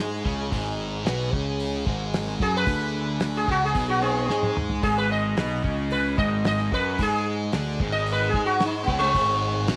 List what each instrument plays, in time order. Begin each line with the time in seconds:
Already playing: picked electric bass G#2, distorted electric guitar G#3 G#4, sitar G#3, string section G#4 G#5
0.25 picked electric bass C#2, distorted electric guitar C#3 C#4, kick
0.51 picked electric bass G#1, distorted electric guitar G#2 G#3, kick, open hi-hat
1.04 picked electric bass B1, distorted electric guitar B2 B3, snare, open hi-hat
1.33 picked electric bass C#2, distorted electric guitar C#3 C#4, kick
1.60 open hi-hat
1.86 picked electric bass G#1, distorted electric guitar G#2 G#3, kick
2.14 snare, open hi-hat
2.28 snare
2.40 picked electric bass F#2, distorted electric guitar F#3 F#4, sitar G#4, kick
2.57 sitar B4
2.67 picked electric bass D2, distorted electric guitar D3 D4, kick, open hi-hat
3.20 snare, open hi-hat
3.37 sitar G#4
3.48 picked electric bass C#2, distorted electric guitar C#3 C#4, sitar F#4, kick
3.65 sitar G#4
3.74 picked electric bass B1, distorted electric guitar B2 B3, kick, open hi-hat
3.89 sitar F#4
4.01 sitar C4 G#4
4.29 picked electric bass G#2, distorted electric guitar G#3 G#4, snare
4.43 high tom
4.57 mid tom
4.70 floor tom
4.83 picked electric bass G#1, distorted electric guitar G#2 G#3, sitar G#4, kick, open hi-hat
4.98 sitar B4
5.12 sitar D#5
5.36 picked electric bass B1, distorted electric guitar B2 B3, snare, open hi-hat
5.63 picked electric bass C#2, distorted electric guitar C#3 C#4, kick
5.90 sitar B4, open hi-hat
6.17 picked electric bass G#1, distorted electric guitar G#2 G#3, sitar D#5, kick
6.45 sitar D#5, snare, open hi-hat
6.59 snare
6.72 picked electric bass F#2, distorted electric guitar F#3 F#4, sitar B4, kick
6.98 picked electric bass G#2, distorted electric guitar G#3 G#4, kick, open hi-hat
7.02 sitar G#4
7.52 picked electric bass D2, distorted electric guitar D3 D4, snare, open hi-hat
7.80 picked electric bass G#1, distorted electric guitar G#2 G#3, kick
7.92 sitar D#5
8.06 open hi-hat
8.12 sitar B4
8.29 sitar G#4
8.34 picked electric bass G#2, distorted electric guitar G#3 G#4, kick
8.46 sitar F#4
8.60 snare, open hi-hat
8.65 sitar D#4
8.84 sitar B3
8.88 picked electric bass C#2, distorted electric guitar C#3 C#4, kick
8.99 sitar G#3 C4
9.15 picked electric bass G#1, distorted electric guitar G#2 G#3, kick, open hi-hat
9.67 picked electric bass B1, distorted electric guitar B2 B3, snare, open hi-hat